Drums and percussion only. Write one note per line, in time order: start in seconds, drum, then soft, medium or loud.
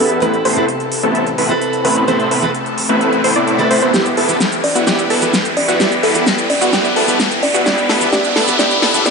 0.10 closed hi-hat soft
0.22 closed hi-hat medium
0.34 closed hi-hat soft
0.45 open hi-hat loud
0.57 closed hi-hat soft
0.69 closed hi-hat medium
0.80 closed hi-hat soft
0.92 open hi-hat loud
1.03 closed hi-hat soft
1.15 closed hi-hat medium
1.27 closed hi-hat soft
1.38 open hi-hat loud
1.62 closed hi-hat medium
1.73 closed hi-hat soft
1.85 open hi-hat loud
1.96 closed hi-hat soft
2.08 closed hi-hat medium
2.20 closed hi-hat soft
2.31 open hi-hat loud
2.43 closed hi-hat soft
2.55 closed hi-hat medium
2.66 closed hi-hat soft
2.78 open hi-hat loud
2.89 closed hi-hat soft
3.01 closed hi-hat medium
3.13 closed hi-hat soft
3.24 open hi-hat loud
3.48 closed hi-hat medium
3.59 closed hi-hat soft
3.71 open hi-hat loud
3.82 closed hi-hat soft
3.94 snare soft
3.94 closed hi-hat medium
3.94 cabasa medium
4.06 closed hi-hat soft
4.06 cabasa soft
4.17 open hi-hat loud
4.29 closed hi-hat soft
4.29 cabasa medium
4.40 snare soft
4.40 closed hi-hat medium
4.40 cabasa medium
4.52 closed hi-hat soft
4.52 cabasa soft
4.64 open hi-hat loud
4.75 cabasa medium
4.87 snare medium
4.87 closed hi-hat medium
4.87 cabasa medium
4.99 closed hi-hat soft
4.99 cabasa soft
5.10 open hi-hat loud
5.22 cabasa medium
5.34 snare medium
5.34 closed hi-hat medium
5.34 cabasa medium
5.45 closed hi-hat soft
5.45 cabasa soft
5.57 open hi-hat loud
5.68 closed hi-hat soft
5.68 cabasa medium
5.80 snare medium
5.80 closed hi-hat medium
5.80 cabasa medium
5.92 closed hi-hat soft
5.92 cabasa soft
6.03 open hi-hat loud
6.15 closed hi-hat soft
6.15 cabasa medium
6.27 snare medium
6.27 closed hi-hat medium
6.27 cabasa medium
6.38 closed hi-hat soft
6.38 cabasa soft
6.50 open hi-hat loud
6.61 closed hi-hat soft
6.61 cabasa medium
6.73 snare medium
6.73 closed hi-hat medium
6.73 cabasa medium
6.85 closed hi-hat soft
6.85 cabasa soft
6.96 open hi-hat loud
7.08 closed hi-hat soft
7.08 cabasa medium
7.20 snare medium
7.20 closed hi-hat medium
7.20 cabasa medium
7.31 closed hi-hat soft
7.31 cabasa soft
7.43 open hi-hat loud
7.54 closed hi-hat soft
7.54 cabasa medium
7.66 snare medium
7.66 closed hi-hat medium
7.66 cabasa medium
7.78 closed hi-hat soft
7.78 cabasa soft
7.89 snare medium
7.89 open hi-hat loud
8.01 closed hi-hat soft
8.01 cabasa medium
8.13 snare medium
8.13 closed hi-hat medium
8.13 cabasa medium
8.24 closed hi-hat soft
8.24 cabasa soft
8.36 snare medium
8.36 open hi-hat loud
8.48 closed hi-hat soft
8.48 cabasa medium
8.59 snare medium
8.59 closed hi-hat medium
8.59 cabasa medium
8.71 closed hi-hat soft
8.71 cabasa soft
8.82 snare medium
8.82 open hi-hat loud
8.94 closed hi-hat soft
8.94 cabasa medium
9.06 snare medium
9.06 closed hi-hat medium
9.06 cabasa medium